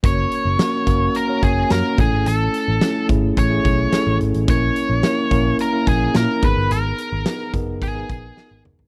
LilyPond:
<<
  \new Staff \with { instrumentName = "Lead electric guitar" } { \time 4/4 \key fis \mixolydian \tempo 4 = 108 cis''2 ais'8 gis'8 ais'8 gis'8 | a'4. r8 cis''4. r8 | cis''2 ais'8 gis'8 ais'8 b'8 | ais'4. r8 gis'4. r8 | }
  \new Staff \with { instrumentName = "Tine electric piano" } { \time 4/4 \key fis \mixolydian <ais cis' fis' ais'>8. r16 <ais cis' fis' ais'>16 r16 <ais cis' fis' ais'>8 r16 <ais cis' fis' cis''>8 r16 <ais cis' fis' ais'>8 <a cis' e' a'>8~ | <a cis' e' a'>8. r16 <a cis' e' a'>16 r16 <a cis' e' gis'>8 r16 <a cis' e' gis'>8 r16 <a cis' e' a'>8. r16 | <ais cis' e' ais'>8. r16 <ais cis' e' ais'>16 r16 <ais cis' e' ais'>8 r16 <ais cis' e' ais'>8 r16 <ais cis' e' ais'>8 <b dis' gis' ais'>8~ | <b dis' gis' ais'>8. r16 <b dis' gis' ais'>16 r16 <b dis' gis' ais'>8 r16 <b dis' gis' b'>8 r16 <b dis' gis' ais'>8. r16 | }
  \new Staff \with { instrumentName = "Picked electric bass" } { \clef bass \time 4/4 \key fis \mixolydian fis,,8 r16 fis,,16 r8 fis,,8 r8 fis,,8 fis,16 r16 a,,16 gis,,16 | a,,8 r16 a,,16 r8 gis,,8 a,,8 b,,8 r16 a,,16 gis,,16 a,,16 | ais,,8 r16 ais,,16 r8 ais,,8 r8 ais,,8 ais,16 r16 gis,,16 g,,16 | gis,,8 r16 gis,,16 r8 fis,,8 gis,,8 ais,,8 r16 gis,,16 fis,,16 g,,16 | }
  \new DrumStaff \with { instrumentName = "Drums" } \drummode { \time 4/4 <hh bd>8 hh8 <hh sn>8 <hh bd>8 hh8 <hh bd>8 <hh sn>8 <hh bd>8 | hh8 hh8 <hh sn>8 <hh bd>8 <hh bd>8 <hh bd>8 <hh sn>8 hh16 hh16 | <hh bd>8 hh8 <hh sn>8 <hh bd>8 hh8 <hh bd>8 <hh sn>8 <hh bd>8 | hh8 hh8 <hh sn>8 <hh bd>8 <hh bd>8 <hh bd>8 sn8 toml16 tomfh16 | }
>>